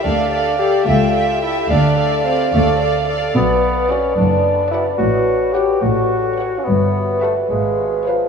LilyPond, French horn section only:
\new Staff \with { instrumentName = "French horn section" } { \time 6/8 \key d \minor \tempo 4. = 73 << { f''4. e''4. | f''2. | \key b \minor d''2. | cis''2. |
e''4. eis''4. | } \\ { a'2.~ | a'2. | b'2.~ | b'4. a'4. |
b'2. | } >> }